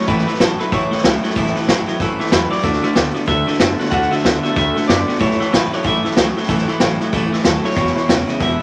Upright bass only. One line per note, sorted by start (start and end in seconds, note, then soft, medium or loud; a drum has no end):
0.08 0.25 A1 loud
0.27 muted upright bass stroke medium
0.40 0.57 A1 loud
0.59 muted upright bass stroke medium
0.72 0.89 A1 medium
0.90 muted upright bass stroke medium
1.04 1.21 C#2 loud
1.24 muted upright bass stroke medium
1.36 1.53 A1 loud
1.67 1.85 A1 loud
1.88 muted upright bass stroke medium
2.00 2.17 A1 medium
2.21 muted upright bass stroke medium
2.32 2.49 E2 medium
2.51 muted upright bass stroke medium
2.64 2.81 D2 medium
2.84 muted upright bass stroke medium
2.97 3.13 D2 medium
3.28 3.45 D2 medium
3.60 3.77 F#2 loud
3.79 muted upright bass stroke medium
3.92 4.09 D2 loud
4.11 muted upright bass stroke medium
4.24 4.41 D2 loud
4.44 muted upright bass stroke medium
4.56 4.74 D2 loud
4.89 5.06 F#2 loud
5.21 5.38 A1 loud
5.41 muted upright bass stroke medium
5.53 5.70 A1 loud
5.85 6.02 A1 loud
6.05 muted upright bass stroke medium
6.17 6.34 C#2 medium
6.49 6.66 A1 medium
6.69 muted upright bass stroke medium
6.81 6.98 A1 loud
7.00 muted upright bass stroke medium
7.13 7.30 A1 medium
7.32 muted upright bass stroke medium
7.45 7.62 D#2 loud
7.65 muted upright bass stroke medium
7.77 7.94 E1 medium
8.08 8.26 E1 loud
8.29 muted upright bass stroke medium
8.41 8.58 E1 medium